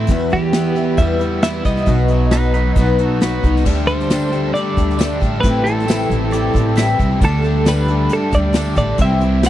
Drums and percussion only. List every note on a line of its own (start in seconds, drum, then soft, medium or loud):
0.07 kick loud
0.07 closed hi-hat medium
0.30 closed hi-hat medium
0.53 snare loud
0.53 closed hi-hat medium
0.76 closed hi-hat medium
0.97 kick loud
0.97 closed hi-hat medium
1.21 closed hi-hat medium
1.42 snare loud
1.42 closed hi-hat medium
1.65 kick medium
1.65 snare soft
1.65 closed hi-hat medium
1.76 snare soft
1.86 kick loud
1.86 closed hi-hat medium
2.08 closed hi-hat medium
2.31 snare loud
2.31 closed hi-hat medium
2.54 closed hi-hat medium
2.76 kick loud
2.76 closed hi-hat loud
2.99 closed hi-hat medium
3.21 snare loud
3.21 closed hi-hat medium
3.44 kick medium
3.44 closed hi-hat medium
3.56 snare soft
3.66 kick loud
3.66 crash loud
3.88 closed hi-hat medium
4.00 snare soft
4.10 snare loud
4.10 closed hi-hat medium
4.10 tambourine medium
4.33 closed hi-hat medium
4.55 closed hi-hat medium
4.77 kick medium
4.77 closed hi-hat medium
4.90 snare soft
4.99 snare loud
4.99 closed hi-hat medium
4.99 tambourine medium
5.22 kick medium
5.22 closed hi-hat medium
5.44 kick loud
5.44 closed hi-hat loud
5.67 closed hi-hat medium
5.79 snare soft
5.88 snare loud
5.88 closed hi-hat loud
5.88 tambourine loud
6.11 closed hi-hat medium
6.33 closed hi-hat loud
6.55 kick medium
6.55 closed hi-hat medium
6.77 snare loud
6.77 closed hi-hat medium
6.77 tambourine loud
6.99 kick medium
6.99 closed hi-hat medium
7.21 kick loud
7.21 closed hi-hat loud
7.44 closed hi-hat medium
7.66 snare loud
7.66 closed hi-hat medium
7.66 tambourine loud
7.88 closed hi-hat medium
8.09 closed hi-hat medium
8.32 kick medium
8.32 closed hi-hat medium
8.54 snare loud
8.54 closed hi-hat medium
8.54 tambourine loud
8.76 kick medium
8.76 closed hi-hat medium
8.98 kick loud
8.98 closed hi-hat medium
9.21 closed hi-hat medium
9.43 snare loud
9.43 closed hi-hat medium
9.43 tambourine loud